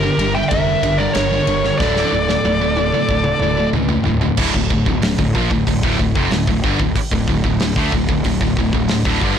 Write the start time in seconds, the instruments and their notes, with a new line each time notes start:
Already playing: lead electric guitar G4 A#4
0.04 distorted electric guitar G2 D3
0.18 picked electric bass G1, distorted electric guitar G2 D3, ride
0.34 distorted electric guitar G2 D3, lead electric guitar E5 G5
0.49 picked electric bass F1, distorted electric guitar G2 D3, lead electric guitar A#4 E5, kick, ride
0.83 picked electric bass G1, distorted electric guitar G2 D3, kick, ride
0.98 distorted electric guitar G2 D3, lead electric guitar A#4 D5
1.13 picked electric bass G1, distorted electric guitar G2 D3, lead electric guitar A#4 C#5, snare, ride
1.30 distorted electric guitar G2 D3
1.47 picked electric bass G1, distorted electric guitar G2 D3, ride
1.64 distorted electric guitar G2 D3, snare
1.78 picked electric bass D1, distorted electric guitar D2 A2 D3, lead electric guitar A4 D5, kick, snare
1.96 snare
2.12 picked electric bass D1, distorted electric guitar D2 A2
2.29 distorted electric guitar D2 A2, snare
2.45 picked electric bass D1, distorted electric guitar D2 A2, high tom
2.61 distorted electric guitar D2 A2
2.77 distorted electric guitar D2 A2, high tom
2.92 distorted electric guitar D2 A2, mid tom
3.09 picked electric bass D1, distorted electric guitar D2 A2, kick
3.24 mid tom
3.40 picked electric bass D1, distorted electric guitar D2 A2, mid tom
3.59 distorted electric guitar D2 A2
3.73 picked electric bass C#2, distorted electric guitar D2 A2, mid tom
3.89 distorted electric guitar D2 A2, floor tom
4.04 picked electric bass D1, floor tom
4.08 distorted electric guitar D2 A2
4.21 distorted electric guitar D2 A2, floor tom
4.37 picked electric bass D1, distorted electric guitar D2 A2, kick, crash
4.54 picked electric bass D1, distorted electric guitar D2 A2, kick
4.70 picked electric bass D1, distorted electric guitar D2 A2, kick
4.86 picked electric bass D1, distorted electric guitar D2 A2, kick
5.02 picked electric bass D1, distorted electric guitar D2 A2, snare, open hi-hat
5.18 picked electric bass D1, distorted electric guitar D2 A2, kick
5.35 picked electric bass A#1, distorted electric guitar A#2 F3, kick
5.51 picked electric bass D1, distorted electric guitar D2 A2, kick
5.67 picked electric bass D1, distorted electric guitar D2 A2, kick, open hi-hat
5.83 picked electric bass D1, distorted electric guitar D2 A2, kick
5.99 picked electric bass D1, distorted electric guitar D2 A2, kick
6.15 picked electric bass F1, distorted electric guitar F2 C3, kick
6.31 picked electric bass D1, distorted electric guitar D2 A2, snare, open hi-hat
6.47 picked electric bass D1, distorted electric guitar D2 A2, kick
6.64 picked electric bass G1, distorted electric guitar G2 D3, kick
6.79 picked electric bass D1, distorted electric guitar D2 A2, kick
6.95 muted picked electric bass stroke, muted distorted electric guitar stroke, kick, open hi-hat
7.11 picked electric bass D1, distorted electric guitar D2 A2, kick
7.27 picked electric bass D1, distorted electric guitar D2 A2, kick
7.44 picked electric bass D1, distorted electric guitar D2 A2, kick
7.60 picked electric bass D1, distorted electric guitar D2 A2, snare, open hi-hat
7.76 picked electric bass D2, distorted electric guitar D3 A3, kick
7.92 picked electric bass D1, distorted electric guitar D2 A2, kick
8.08 picked electric bass D1, distorted electric guitar D2 A2, kick
8.24 picked electric bass D1, distorted electric guitar D2 A2, kick, open hi-hat
8.41 picked electric bass D1, distorted electric guitar D2 A2, kick
8.57 picked electric bass D1, distorted electric guitar D2 A2, kick
8.73 picked electric bass D1, distorted electric guitar D2 A2, kick
8.88 picked electric bass D1, distorted electric guitar D2 A2, snare, open hi-hat
9.05 picked electric bass D1, distorted electric guitar D2 A2, kick
9.21 picked electric bass G1, distorted electric guitar G2 D3, kick